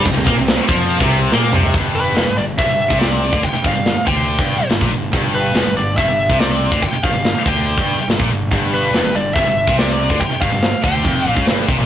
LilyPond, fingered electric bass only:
\new Staff \with { instrumentName = "Fingered electric bass" } { \clef bass \time 4/4 \key c \major \tempo 4 = 142 c,16 c,16 bes,16 c,8 r16 f,8. c,8. bes,8 c,8 | g,,4 f,,16 g,,16 g,,8 g,,16 g,,8 c,4 d,16 | r8 g,,16 g,,8 r16 d,8. g,,8 r16 g,,16 bes,,16 g,,8 | g,,4 f,,16 g,,16 g,,8 g,,16 g,,8 c,4 d,16 |
r8 g,,16 g,,8 r16 d,8. g,,8 r16 g,,16 bes,,16 g,,8 | g,,4 f,,16 g,,16 g,,8 g,,16 g,,8 c,4 d,16 | r8 g,,16 g,,8 r16 d,8 f,,8 bes,,16 cis,16 g,,8 c,16 bes,,16 | }